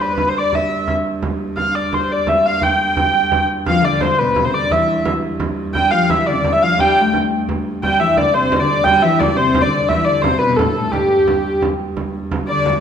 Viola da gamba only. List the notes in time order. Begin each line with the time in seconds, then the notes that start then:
3.66 F3
3.83 D3
4.19 B2
4.44 C3
4.53 D3
4.70 E3
5.75 G3
5.93 F3
6.08 E3
6.26 D3
6.34 C3
6.40 D3
6.61 F3
6.77 G3
7.01 A3
7.83 G3
8.01 E3
8.18 D3
8.34 C3
8.60 D3
8.85 G3
9.04 E3
9.21 D3
9.37 C3
9.65 D3
9.90 E3
10.08 D3
10.26 C3
10.42 B2
10.59 A2
10.77 A2
10.94 G2
12.49 D3